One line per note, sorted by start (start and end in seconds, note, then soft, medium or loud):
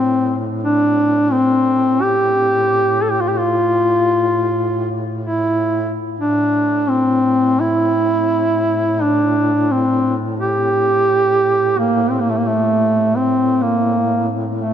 0.00 6.03 A2 soft
0.00 0.38 C4 medium
0.63 1.33 D4 medium
1.32 2.04 C4 loud
2.02 3.04 G4 loud
3.02 3.13 A4 medium
3.12 3.23 G4 medium
3.21 3.30 F4 medium
3.28 3.32 G4 medium
3.28 3.40 G4 medium
3.39 4.98 F4 loud
5.24 5.93 E4 medium
6.19 14.74 A2 soft
6.19 6.91 D4 medium
6.89 7.62 C4 medium
7.60 9.04 E4 medium
9.02 9.73 D4 medium
9.72 10.15 C4 medium
10.40 11.80 G4 loud
11.78 12.12 A#3 medium
12.10 12.23 C4 medium
12.22 12.32 A#3 medium
12.30 12.39 A3 medium
12.38 12.48 A#3 medium
12.47 13.17 A3 medium
13.16 13.64 C4 medium
13.62 14.28 A#3 medium
14.55 14.74 A3 medium